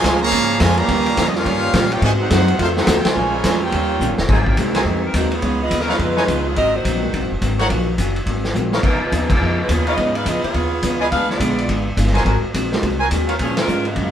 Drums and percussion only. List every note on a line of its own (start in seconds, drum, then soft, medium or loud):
0.04 kick soft
0.04 snare medium
0.04 hi-hat pedal medium
0.04 ride medium
0.32 kick soft
0.32 ride medium
0.60 kick soft
0.60 snare medium
0.60 hi-hat pedal medium
0.60 ride medium
0.77 ride medium
0.88 kick soft
0.88 ride medium
1.06 ride medium
1.17 kick soft
1.17 snare medium
1.17 hi-hat pedal medium
1.17 ride medium
1.35 snare soft
1.45 kick soft
1.45 ride medium
1.73 kick soft
1.73 snare medium
1.73 hi-hat pedal medium
1.73 ride medium
1.92 ride medium
2.02 kick soft
2.02 ride medium
2.30 kick soft
2.30 snare medium
2.30 hi-hat pedal medium
2.30 ride medium
2.48 ride medium
2.59 kick soft
2.59 ride medium
2.77 snare medium
2.87 kick soft
2.87 snare medium
2.87 hi-hat pedal medium
2.87 ride medium
3.05 snare loud
3.05 ride medium
3.44 kick soft
3.44 snare medium
3.44 hi-hat pedal medium
3.44 ride medium
3.72 kick soft
3.72 ride medium
4.01 hi-hat pedal medium
4.18 snare medium
4.29 kick medium
4.29 crash medium
4.46 kick soft
4.57 kick soft
4.57 hi-hat pedal medium
4.57 ride medium
4.75 snare medium
4.75 ride medium
5.14 kick soft
5.14 hi-hat pedal medium
5.14 ride medium
5.31 ride medium
5.42 kick soft
5.42 ride medium
5.71 kick soft
5.71 hi-hat pedal medium
5.71 ride medium
5.80 snare soft
5.90 snare soft
5.99 kick soft
5.99 ride medium
6.17 snare medium
6.28 kick soft
6.28 hi-hat pedal medium
6.28 ride medium
6.56 kick soft
6.56 ride medium
6.85 kick soft
6.85 hi-hat pedal medium
6.85 ride medium
7.13 kick soft
7.13 ride medium
7.42 kick soft
7.42 hi-hat pedal medium
7.42 ride medium
7.59 snare medium
7.59 ride soft
7.70 kick soft
7.70 ride medium
7.98 kick soft
7.98 hi-hat pedal medium
7.98 ride medium
8.16 ride soft
8.26 kick soft
8.26 ride medium
8.44 snare medium
8.55 hi-hat pedal medium
8.73 snare medium
8.83 kick medium
8.83 crash medium
9.12 kick soft
9.12 hi-hat pedal medium
9.12 ride medium
9.30 kick medium
9.30 crash medium
9.69 kick soft
9.69 hi-hat pedal medium
9.69 ride medium
9.87 ride soft
9.97 kick soft
9.97 ride medium
10.15 ride soft
10.26 kick soft
10.26 hi-hat pedal medium
10.26 ride medium
10.44 ride soft
10.54 kick soft
10.54 ride medium
10.83 kick soft
10.83 hi-hat pedal medium
10.83 ride medium
11.11 kick soft
11.11 ride medium
11.30 snare soft
11.40 kick soft
11.40 hi-hat pedal medium
11.40 ride medium
11.58 ride soft
11.68 kick soft
11.68 ride medium
11.97 kick soft
11.97 hi-hat pedal medium
11.97 ride medium
12.07 snare soft
12.15 snare medium
12.15 ride medium
12.26 kick soft
12.26 ride medium
12.54 kick soft
12.54 hi-hat pedal medium
12.54 ride medium
12.72 snare medium
12.83 kick soft
12.83 ride medium
13.11 kick soft
13.11 hi-hat pedal medium
13.11 ride medium
13.29 ride medium
13.39 kick soft
13.39 ride medium
13.57 snare medium
13.57 ride medium
13.67 hi-hat pedal medium
13.85 ride soft
13.96 kick soft
13.96 ride medium